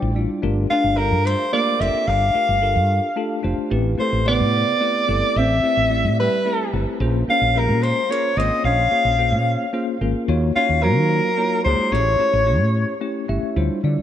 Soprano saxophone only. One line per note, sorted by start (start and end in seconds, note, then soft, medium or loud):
0.70 0.99 F5 medium
0.97 1.27 A#4 medium
1.26 1.52 C5 medium
1.53 1.82 D5 medium
1.80 2.09 E5 medium
2.07 3.44 F5 loud
3.99 4.25 C5 medium
4.28 5.39 D5 medium
5.37 6.19 E5 loud
6.20 6.76 B4 medium
7.30 7.60 F5 loud
7.58 7.84 A#4 medium
7.83 8.12 C5 medium
8.10 8.39 C#5 medium
8.37 8.64 D#5 medium
8.65 9.97 F5 loud
10.56 10.84 F5 medium
10.83 11.64 A#4 loud
11.64 11.93 C5 medium
11.92 13.02 C#5 medium